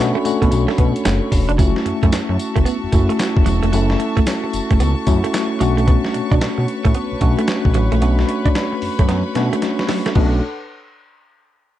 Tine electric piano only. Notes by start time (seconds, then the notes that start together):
0.00 A3 C#4 D4 F#4
0.25 A3 C#4 D4 F#4
1.59 A3 C#4 E4 F4
1.66 F#4
2.93 A3 C#4 E4 F#4
3.73 A3 C#4 E4 A4
5.07 A3 C#4 E4 F#4
5.60 A3 C#4 D4 F#4
7.21 A3 C#4 D4 F#4
8.01 A3 C#4 D4 F#4
9.35 A3 C#4 D4 F#4
10.16 A3 C#4 D4 F#4